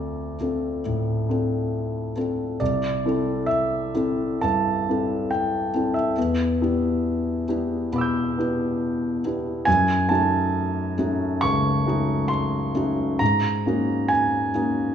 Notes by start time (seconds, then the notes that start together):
Already playing: D2 C4 D4 F4 A4 D5
0.40 C4 D4 F4 A4
0.86 A2
1.29 C4 D4 F4 A4
2.16 C4 D4 F4 A4
2.60 C2 D5
3.05 C4 D4 E4 A4
3.46 E5
3.94 C4 D4 E4 A4
4.41 G2 A5
4.89 C4 D4 E4 A4
5.31 G5
5.74 C4 D4 E4 A4
5.94 E5
6.18 E2
6.61 B3 D4 E4 G4
7.48 B3 D4 E4 G4
7.92 B2 B5 D6
7.98 E6 G6
8.38 B3 D4 E4 G4
9.25 B3 D4 E4 G4
9.65 F#2 G#5
10.09 A3 C#4 D#4 F#4 A5
10.98 A3 C#4 D#4 F#4
11.41 C#2 C#6
11.86 A3 C#4 D#4 F#4
12.28 C6
12.75 A3 C#4 D#4 F#4
13.19 G#2 A#5
13.66 A#3 C#4 D#4 F#4
14.08 G#5
14.54 A#3 C#4 D#4 F#4